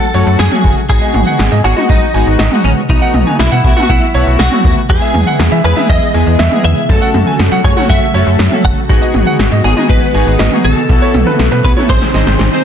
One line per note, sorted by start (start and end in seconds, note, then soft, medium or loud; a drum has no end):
0.00 0.39 A4 loud
0.14 0.24 F#2 loud
0.14 0.43 F#3 medium
0.14 0.43 A3 medium
0.14 0.43 C#4 medium
0.14 0.43 F#4 medium
0.14 0.22 C#5 medium
0.14 closed hi-hat medium
0.27 0.36 F#2 loud
0.39 0.49 F#2 loud
0.39 0.74 G#4 medium
0.39 snare loud
0.39 closed hi-hat medium
0.52 0.81 F#3 medium
0.52 0.81 A3 medium
0.52 0.81 C#4 medium
0.52 0.81 F#4 medium
0.52 mid tom loud
0.64 0.74 F#1 medium
0.64 kick medium
0.64 closed hi-hat medium
0.89 0.99 G#1 loud
0.89 1.47 G#3 medium
0.89 1.47 B3 medium
0.89 1.47 D#4 medium
0.89 1.47 F#4 medium
0.89 1.64 G#4 loud
0.89 kick loud
0.89 closed hi-hat medium
1.02 1.09 D#5 medium
1.14 1.24 G#1 loud
1.14 closed hi-hat medium
1.14 mid tom loud
1.27 1.34 F#5 medium
1.39 1.49 G#1 loud
1.39 snare loud
1.39 closed hi-hat medium
1.52 1.61 G#2 medium
1.52 1.59 D#5 medium
1.64 1.74 G#1 loud
1.64 1.74 G#3 medium
1.64 1.74 B3 medium
1.64 1.74 D#4 medium
1.64 1.88 F#4 medium
1.64 1.74 G#4 medium
1.64 closed hi-hat medium
1.64 cowbell medium
1.77 2.06 G#3 medium
1.77 2.06 B3 medium
1.77 2.06 D#4 medium
1.77 2.06 F#4 medium
1.77 1.84 D#5 medium
1.77 mid tom medium
1.89 1.99 G#1 loud
1.89 2.64 D#4 medium
1.89 2.04 D#5 medium
1.89 kick loud
1.89 closed hi-hat medium
2.14 2.24 G#1 loud
2.14 2.43 G#3 medium
2.14 2.43 B3 medium
2.14 2.43 D#4 medium
2.14 2.43 F#4 medium
2.14 2.22 G#5 medium
2.14 closed hi-hat medium
2.27 2.36 G#1 loud
2.39 2.49 G#1 loud
2.39 2.75 D#5 loud
2.39 snare loud
2.39 closed hi-hat medium
2.52 2.81 G#3 medium
2.52 2.81 B3 medium
2.52 2.81 D#4 medium
2.52 2.81 F#4 medium
2.52 mid tom loud
2.64 2.74 A1 medium
2.64 2.71 C#4 medium
2.64 closed hi-hat medium
2.89 2.99 B1 loud
2.89 3.47 E3 medium
2.89 3.47 A3 medium
2.89 3.47 B3 medium
2.89 3.36 D#4 medium
2.89 3.47 F#4 medium
2.89 kick loud
2.89 closed hi-hat medium
3.02 3.09 F#5 medium
3.14 3.24 B1 loud
3.14 closed hi-hat medium
3.14 mid tom loud
3.27 3.34 G#5 medium
3.27 mid tom medium
3.39 3.49 B1 loud
3.39 3.82 E4 medium
3.39 snare loud
3.39 closed hi-hat medium
3.52 3.61 B2 loud
3.52 3.59 F#5 medium
3.64 3.74 B1 loud
3.64 3.74 A3 medium
3.64 3.74 B3 medium
3.64 3.74 E4 medium
3.64 3.74 F#4 medium
3.64 kick loud
3.64 closed hi-hat medium
3.77 4.06 A3 medium
3.77 4.06 B3 medium
3.77 4.06 E4 medium
3.77 4.06 F#4 medium
3.77 3.84 F#5 medium
3.77 mid tom medium
3.83 3.89 F#4 medium
3.89 3.99 B1 loud
3.89 4.41 E4 medium
3.89 4.04 F#5 medium
3.89 kick loud
3.89 closed hi-hat medium
4.14 4.24 B1 loud
4.14 4.43 A3 medium
4.14 4.43 B3 medium
4.14 4.43 E4 medium
4.14 4.43 F#4 medium
4.14 4.22 C#5 medium
4.14 closed hi-hat medium
4.27 4.36 B1 loud
4.39 4.49 B1 loud
4.39 4.74 F#4 medium
4.39 snare loud
4.39 closed hi-hat medium
4.52 4.81 A3 medium
4.52 4.81 B3 medium
4.52 4.81 E4 medium
4.52 4.81 F#4 medium
4.52 mid tom loud
4.64 4.74 D#2 medium
4.64 kick medium
4.64 closed hi-hat medium
4.89 4.99 E2 loud
4.89 6.87 E3 medium
4.89 5.47 G#3 medium
4.89 5.47 B3 medium
4.89 6.87 B3 medium
4.89 5.47 E4 medium
4.89 5.47 G#4 medium
4.89 5.64 G#4 loud
4.89 kick loud
4.89 closed hi-hat medium
5.02 5.09 E5 medium
5.14 5.24 E2 loud
5.14 closed hi-hat medium
5.14 mid tom loud
5.27 5.34 F#5 medium
5.39 5.49 E2 loud
5.39 snare loud
5.39 closed hi-hat medium
5.52 5.61 E3 medium
5.52 5.59 E5 medium
5.64 5.74 E2 loud
5.64 5.74 G#3 medium
5.64 5.74 B3 medium
5.64 5.74 E4 medium
5.64 5.74 G#4 medium
5.64 5.89 B4 medium
5.64 closed hi-hat medium
5.64 cowbell medium
5.77 6.06 G#3 medium
5.77 6.06 B3 medium
5.77 6.06 E4 medium
5.77 6.06 G#4 medium
5.77 5.84 E5 medium
5.77 mid tom medium
5.89 5.99 E2 loud
5.89 6.64 D#5 loud
5.89 6.04 E5 medium
5.89 kick loud
5.89 closed hi-hat medium
6.14 6.24 E2 loud
6.14 6.43 G#3 medium
6.14 6.43 B3 medium
6.14 6.43 E4 medium
6.14 6.43 G#4 medium
6.14 6.22 G#5 medium
6.14 closed hi-hat medium
6.27 6.36 E2 loud
6.39 6.49 E2 loud
6.39 6.75 E5 loud
6.39 snare loud
6.39 closed hi-hat medium
6.52 6.81 G#3 medium
6.52 6.81 B3 medium
6.52 6.81 E4 medium
6.52 6.81 G#4 medium
6.52 mid tom loud
6.64 6.74 E2 medium
6.64 6.90 E5 loud
6.64 closed hi-hat medium
6.89 6.99 F#2 loud
6.89 8.87 C#3 medium
6.89 8.87 F#3 medium
6.89 7.47 A3 medium
6.89 8.87 A3 medium
6.89 7.47 C#4 medium
6.89 8.87 F#4 medium
6.89 7.47 F#4 medium
6.89 7.47 A4 medium
6.89 7.60 A4 loud
6.89 kick loud
6.89 closed hi-hat medium
7.02 7.09 F#5 medium
7.14 7.24 F#2 loud
7.14 closed hi-hat medium
7.14 mid tom loud
7.27 7.34 G#5 medium
7.39 7.49 F#2 loud
7.39 snare loud
7.39 closed hi-hat medium
7.52 7.61 F#3 loud
7.52 7.59 F#5 medium
7.64 7.74 F#2 loud
7.64 7.74 A3 medium
7.64 7.74 C#4 medium
7.64 7.74 F#4 medium
7.64 7.74 G#4 medium
7.64 7.88 C#5 loud
7.64 kick loud
7.64 closed hi-hat medium
7.64 cowbell medium
7.77 8.06 A3 medium
7.77 8.06 C#4 medium
7.77 8.06 F#4 medium
7.77 8.06 A4 medium
7.77 7.84 F#5 medium
7.77 mid tom medium
7.89 7.99 F#2 loud
7.89 8.64 E5 loud
7.89 8.04 F#5 medium
7.89 kick loud
7.89 closed hi-hat medium
8.14 8.24 F#2 loud
8.14 8.43 A3 medium
8.14 8.43 C#4 medium
8.14 8.43 F#4 medium
8.14 8.43 A4 medium
8.14 8.22 C#5 medium
8.14 closed hi-hat medium
8.27 8.36 F#2 loud
8.39 8.49 F#2 loud
8.39 snare loud
8.39 closed hi-hat medium
8.52 8.81 A3 medium
8.52 8.81 C#4 medium
8.52 8.81 F#4 medium
8.52 8.81 A4 medium
8.52 mid tom loud
8.64 8.74 F#1 medium
8.64 8.71 F#5 loud
8.64 kick medium
8.64 closed hi-hat medium
8.89 8.99 G#1 loud
8.89 10.87 D#3 medium
8.89 10.87 G#3 medium
8.89 11.86 B3 medium
8.89 9.47 B3 medium
8.89 9.47 D#4 medium
8.89 10.87 F#4 medium
8.89 9.47 F#4 medium
8.89 9.67 F#4 loud
8.89 9.47 G#4 medium
8.89 kick loud
8.89 closed hi-hat medium
9.02 9.09 D#5 medium
9.14 9.24 G#1 loud
9.14 closed hi-hat medium
9.14 mid tom loud
9.27 9.34 F#5 medium
9.39 9.49 G#1 loud
9.39 snare loud
9.39 closed hi-hat medium
9.52 9.61 G#2 medium
9.52 9.59 D#5 medium
9.64 9.74 G#1 loud
9.64 9.74 B3 medium
9.64 9.74 D#4 medium
9.64 9.74 F#4 medium
9.64 9.74 G#4 medium
9.64 9.89 G#4 medium
9.64 closed hi-hat medium
9.64 cowbell medium
9.77 10.06 B3 medium
9.77 10.06 D#4 medium
9.77 10.06 F#4 medium
9.77 10.06 G#4 medium
9.77 9.84 D#5 medium
9.77 mid tom medium
9.89 9.99 G#1 loud
9.89 10.64 B4 loud
9.89 10.04 D#5 medium
9.89 kick loud
9.89 closed hi-hat medium
10.14 10.24 G#1 medium
10.14 10.43 B3 medium
10.14 10.43 D#4 medium
10.14 10.43 F#4 medium
10.14 10.43 G#4 medium
10.14 10.22 G#5 medium
10.14 closed hi-hat medium
10.27 10.36 G#1 loud
10.39 10.49 G#1 loud
10.39 10.74 D#5 loud
10.39 snare loud
10.39 closed hi-hat medium
10.52 10.81 B3 medium
10.52 10.81 D#4 medium
10.52 10.81 F#4 medium
10.52 10.81 G#4 medium
10.52 mid tom medium
10.64 10.74 A1 medium
10.64 11.67 A4 loud
10.64 closed hi-hat medium
10.89 10.99 B1 loud
10.89 11.88 E3 medium
10.89 11.88 A3 medium
10.89 11.47 B3 medium
10.89 11.47 E4 medium
10.89 11.88 F#4 medium
10.89 11.47 F#4 medium
10.89 11.47 A4 medium
10.89 kick loud
10.89 closed hi-hat medium
11.02 11.09 C#5 medium
11.14 11.24 B1 loud
11.14 closed hi-hat medium
11.14 mid tom loud
11.27 11.34 B4 medium
11.27 mid tom medium
11.39 11.49 B1 loud
11.39 snare loud
11.39 closed hi-hat medium
11.52 11.61 B2 loud
11.52 11.59 B4 medium
11.64 11.74 B1 loud
11.64 11.74 B3 medium
11.64 11.74 E4 medium
11.64 11.74 F#4 medium
11.64 11.74 G#4 medium
11.64 11.71 B4 loud
11.64 kick loud
11.64 closed hi-hat medium
11.77 11.89 B3 medium
11.77 11.89 E4 medium
11.77 11.89 F#4 medium
11.77 11.89 A4 medium
11.77 11.84 C#5 medium
11.77 mid tom medium
11.89 11.99 G#1 loud
11.89 12.64 C3 medium
11.89 12.64 D#3 medium
11.89 12.64 G#3 medium
11.89 12.09 C4 medium
11.89 12.09 D#4 medium
11.89 12.09 G#4 medium
11.89 12.04 C5 medium
11.89 12.09 C5 medium
11.89 12.60 C5 medium
11.89 kick loud
11.89 snare medium
11.89 closed hi-hat medium
12.02 snare medium
12.14 12.24 G#1 loud
12.14 12.43 C4 medium
12.14 12.43 D#4 medium
12.14 12.43 G#4 medium
12.14 12.43 C5 medium
12.14 12.22 D#5 medium
12.14 snare medium
12.14 closed hi-hat medium
12.27 12.36 G#1 loud
12.27 snare medium
12.39 12.49 G#1 loud
12.39 snare medium
12.39 closed hi-hat medium
12.52 12.64 C4 medium
12.52 12.64 D#4 medium
12.52 12.64 G#4 medium
12.52 12.64 C5 loud